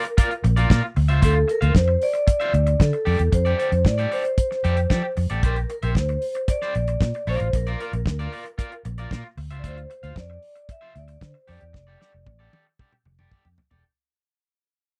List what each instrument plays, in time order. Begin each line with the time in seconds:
Already playing: vibraphone A#4
0.05 muted clean electric guitar stroke, closed hi-hat
0.17 clean electric guitar F4 A#4 D5, kick, closed hi-hat
0.31 muted clean electric guitar stroke, closed hi-hat
0.44 fingered electric bass A#1, muted clean electric guitar stroke, closed hi-hat
0.56 clean electric guitar F4 A#4 D5, closed hi-hat
0.70 fingered electric bass A#2, clean electric guitar F4 A#4 D5, kick, snare
0.83 muted clean electric guitar stroke
0.96 fingered electric bass D2, muted clean electric guitar stroke, open hi-hat
1.08 fingered electric bass C#2, clean electric guitar F4 C5 E5, closed hi-hat
1.22 fingered electric bass D2, clean electric guitar F4 C5 E5, vibraphone A4, kick, closed hi-hat
1.35 muted clean electric guitar stroke
1.48 vibraphone A#4, muted clean electric guitar stroke, closed hi-hat
1.61 fingered electric bass D2, clean electric guitar F4 C5 F5, closed hi-hat
1.74 fingered electric bass F2, vibraphone C5, muted clean electric guitar stroke, kick, snare
1.88 muted clean electric guitar stroke
2.02 vibraphone D5, open hi-hat
2.13 muted clean electric guitar stroke, closed hi-hat
2.27 muted clean electric guitar stroke, kick, closed hi-hat
2.40 clean electric guitar F4 C5 E5, closed hi-hat
2.54 fingered electric bass D2, muted clean electric guitar stroke, closed hi-hat
2.67 muted clean electric guitar stroke, closed hi-hat
2.80 fingered electric bass D3, vibraphone A4, muted clean electric guitar stroke, kick, snare
2.93 muted clean electric guitar stroke, closed hi-hat
3.05 fingered electric bass F2, clean electric guitar G4 A4 D5, open hi-hat
3.19 fingered electric bass E2, muted clean electric guitar stroke, closed hi-hat
3.32 fingered electric bass F2, vibraphone C5, muted clean electric guitar stroke, kick, closed hi-hat
3.45 clean electric guitar G4 A4 D5, closed hi-hat
3.58 clean electric guitar G4 A4 D5, closed hi-hat
3.72 fingered electric bass F2, muted clean electric guitar stroke, closed hi-hat
3.85 fingered electric bass A2, vibraphone D5, muted clean electric guitar stroke, kick, snare
3.98 clean electric guitar G4 A4 D5, closed hi-hat
4.05 vibraphone D5
4.11 clean electric guitar G4 A4 D5, vibraphone C5, open hi-hat
4.24 muted clean electric guitar stroke, closed hi-hat
4.38 kick, closed hi-hat
4.51 muted clean electric guitar stroke, snare
4.64 fingered electric bass F2, clean electric guitar G4 A4 D5, closed hi-hat
4.77 muted clean electric guitar stroke, closed hi-hat
4.90 fingered electric bass F3, clean electric guitar G4 A4 D5, kick, snare
5.03 muted clean electric guitar stroke
5.17 fingered electric bass F2, muted clean electric guitar stroke, open hi-hat
5.30 fingered electric bass A1, clean electric guitar G4 A4 D5, closed hi-hat
5.43 fingered electric bass A#1, clean electric guitar G4 C5 D5, vibraphone A#4, kick, closed hi-hat
5.56 muted clean electric guitar stroke, closed hi-hat
5.70 vibraphone A#4, muted clean electric guitar stroke, closed hi-hat
5.83 fingered electric bass A#1, clean electric guitar G4 C5 E5, closed hi-hat
5.95 fingered electric bass D2, vibraphone C5, kick, snare
6.09 muted clean electric guitar stroke, closed hi-hat
6.22 open hi-hat
6.35 muted clean electric guitar stroke, closed hi-hat
6.48 vibraphone D5, muted clean electric guitar stroke, kick, closed hi-hat
6.62 clean electric guitar G4 C5 D5, snare
6.75 fingered electric bass A#1, muted clean electric guitar stroke, closed hi-hat
6.88 muted clean electric guitar stroke, closed hi-hat
7.01 fingered electric bass A#2, muted clean electric guitar stroke, kick, snare
7.14 muted clean electric guitar stroke, closed hi-hat
7.27 fingered electric bass A#1, clean electric guitar F4 A#4 D5, vibraphone C5, open hi-hat
7.40 fingered electric bass A1, muted clean electric guitar stroke, closed hi-hat
7.53 fingered electric bass A#1, vibraphone A#4, muted clean electric guitar stroke, kick, closed hi-hat
7.67 clean electric guitar F4 A#4 D5, closed hi-hat
7.80 clean electric guitar F4 A#4 D5, vibraphone A#4, closed hi-hat
7.93 fingered electric bass A#1, muted clean electric guitar stroke, closed hi-hat
8.06 fingered electric bass D2, muted clean electric guitar stroke, kick, snare
8.19 clean electric guitar F4 A#4 D5, closed hi-hat
8.32 clean electric guitar F4 A#4 D5, open hi-hat
8.45 muted clean electric guitar stroke, closed hi-hat
8.58 clean electric guitar F4 A#4 D5, kick, closed hi-hat
8.72 muted clean electric guitar stroke, closed hi-hat
8.85 fingered electric bass A#1, muted clean electric guitar stroke, closed hi-hat
8.98 clean electric guitar F4 A#4 D5, closed hi-hat
9.11 fingered electric bass A#2, clean electric guitar F4 A#4 D5, kick, snare
9.24 muted clean electric guitar stroke
9.37 fingered electric bass D2, muted clean electric guitar stroke, open hi-hat
9.51 fingered electric bass C#2, clean electric guitar F4 C5 E5, closed hi-hat
9.59 vibraphone D5
9.63 fingered electric bass D2, clean electric guitar F4 C5 E5, vibraphone C5, kick, closed hi-hat
9.77 muted clean electric guitar stroke, closed hi-hat
9.90 muted clean electric guitar stroke, closed hi-hat
10.03 fingered electric bass D2, clean electric guitar F4 C5 F5, closed hi-hat
10.16 fingered electric bass F2, vibraphone D5, muted clean electric guitar stroke, kick, snare
10.30 muted clean electric guitar stroke
10.43 open hi-hat
10.56 muted clean electric guitar stroke, closed hi-hat
10.69 vibraphone E5, muted clean electric guitar stroke, kick, closed hi-hat
10.81 clean electric guitar F4 C5 E5
10.95 fingered electric bass D2, vibraphone D5, muted clean electric guitar stroke, closed hi-hat
11.08 muted clean electric guitar stroke, closed hi-hat
11.21 fingered electric bass D3, vibraphone C5, muted clean electric guitar stroke, kick, snare
11.34 muted clean electric guitar stroke
11.47 fingered electric bass F2, clean electric guitar G4 A4 D5, vibraphone D5, open hi-hat
11.60 fingered electric bass E2, muted clean electric guitar stroke, closed hi-hat
11.73 fingered electric bass F1, muted clean electric guitar stroke, kick, snare
11.87 clean electric guitar G4 A4 D5
12.00 clean electric guitar G4 A4 D5, snare
12.13 fingered electric bass F1, muted clean electric guitar stroke
12.26 fingered electric bass A1, muted clean electric guitar stroke, kick, high tom
12.39 clean electric guitar G4 A4 D5
12.53 clean electric guitar G4 A4 D5, high tom
12.66 muted clean electric guitar stroke
12.79 clean electric guitar G4 A4 D5, kick, mid tom
12.93 muted clean electric guitar stroke, mid tom
13.05 fingered electric bass F1, muted clean electric guitar stroke, mid tom
13.19 clean electric guitar G4 A4 D5, mid tom
13.32 clean electric guitar G4 A4 D5, kick, mid tom
13.45 fingered electric bass F2, muted clean electric guitar stroke, floor tom
13.58 muted clean electric guitar stroke, floor tom
13.71 fingered electric bass E1, clean electric guitar G4 A4 D5, floor tom